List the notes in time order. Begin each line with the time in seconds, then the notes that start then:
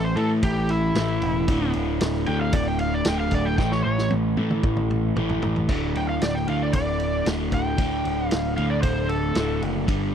Already playing: A1 A2 E3 A3
0.04 C5
0.16 A2 E3 A3 A4, ride
0.43 A1 G4, kick, ride
0.69 E4, ride
0.95 A1 A2 E3 A3, snare, ride
1.22 E1, ride
1.48 D1 D2 A2 D3, kick, ride
1.73 D1, ride
2.01 D1, snare, ride
2.14 snare
2.26 D2 A2 D3 G5, ride
2.41 F5
2.53 D1 D5, kick, ride
2.68 G5
2.79 F5, ride
2.94 D5
3.05 D1 D2 A2 D3 G5, snare, ride
3.20 F5
3.31 D1 D5, kick, ride
3.46 G5
3.58 A1 A2 E3 A3 G5, kick, snare
3.71 C#5, snare
3.85 A1 C#5
3.98 snare
4.10 A1, high tom
4.37 A2 E3 A3, high tom
4.50 mid tom
4.63 A1, kick
4.77 mid tom
4.91 mid tom
5.16 A1 A2 E3 A3, mid tom
5.29 floor tom
5.42 A1, floor tom
5.56 floor tom
5.69 D1 D2 A2 D3, kick, crash
5.95 D1 G5, ride
6.09 F5
6.21 D1 D5, snare, ride
6.35 G5, snare
6.47 D2 A2 D3 F5, ride
6.63 D5
6.73 D1 D5, kick, ride
7.00 ride
7.25 D1 D2 A2 D3, snare, ride
7.52 D1 G5, kick, ride
7.77 D1 D2 A2 D3, kick, ride
8.05 D1, ride
8.28 F5, snare, ride
8.32 D1
8.56 D2 A2 D3 F5, ride
8.70 D5
8.83 D1 C5, kick, ride
9.09 A4, ride
9.35 D1 D2 A2 D3, snare, ride
9.62 F#1, ride
9.87 G1 G2 D3 G3, kick, ride